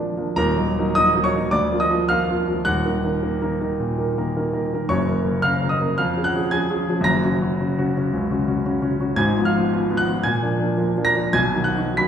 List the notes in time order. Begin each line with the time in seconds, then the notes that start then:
Already playing: F2 F3 A#3 D4
0.17 F3 A#3 D4
0.36 D#1 D#2 A#4 A#5
0.57 F#3 A#3 D#4
0.79 F#3 A#3 D#4
0.95 F#3 A#3 D#4 D#5 D#6
1.15 F#3 A#3 D#4
1.24 C#5 C#6
1.35 F#3 A#3 D#4
1.51 D2 D5 D6
1.72 F3 A#3 F4
1.80 D#5 D#6
1.90 F3 A#3 F4
2.09 F3 A#3 F4 F5 F6
2.30 F3 A#3 F4
2.48 F3 A#3 F4
2.65 D#1 D#2 F#5 F#6
2.85 D#3 A#3 A#4
3.04 D#3 A#3 A#4
3.23 D#3 A#3 A#4
3.42 D#3 A#3 A#4
3.61 D#3 A#3 A#4
3.80 A#2
3.98 D#3 A#3 A#4
4.18 D#3 A#3 A#4
4.37 D#3 A#3 A#4
4.53 D#3 A#3 A#4
4.74 D#3 A#3 A#4
4.89 F#1 F#2 C#5 C#6
5.08 C#3 A#3 A#4
5.25 C#3 A#3 A#4
5.42 C#3 A#3 A#4 F5 F6
5.63 C#3 A#3 A#4
5.69 D#5 D#6
5.81 C#3 A#3 A#4
5.98 F2 F5 F6
6.16 F3 C#4 G#4
6.24 F#5 F#6
6.35 F3 C#4 G#4
6.51 F3 C#4 G#4 G#5 G#6
6.70 F3 C#4 G#4
6.88 F3 C#4 G#4
7.01 F#1 F#2 A#6
7.05 A#5
7.24 C#3 C#4 F#4
7.42 C#3 C#4 F#4
7.60 C#3 C#4 F#4
7.78 C#3 C#4 F#4
7.97 C#3 C#4 F#4
8.13 C#2
8.31 C#3 C#4 F#4
8.48 C#3 C#4 F#4
8.65 C#3 C#4 F#4
8.82 C#3 C#4 F#4
9.00 C#3 C#4 F#4
9.16 G#1 G#2 G#5 G#6
9.37 F3 B3 F4
9.45 F5 F6
9.57 F3 B3 F4
9.73 F3 B3 F4
9.91 F3 B3 F4
9.97 F#5 F#6
10.08 F3 B3 F4
10.24 A#2 G#5 G#6
10.42 F3 A#3 D4
10.59 F3 A#3 D4
10.77 F3 A#3 D4
10.97 F3 A#3 D4
11.05 A#5 A#6
11.15 F3 A#3 D4
11.33 B1 B2 G#5 G#6
11.54 D#3 F#3 F#4
11.64 F#5 F#6
11.77 D#3 F#3 F#4
11.97 D#3 F#3 F#4 B5 B6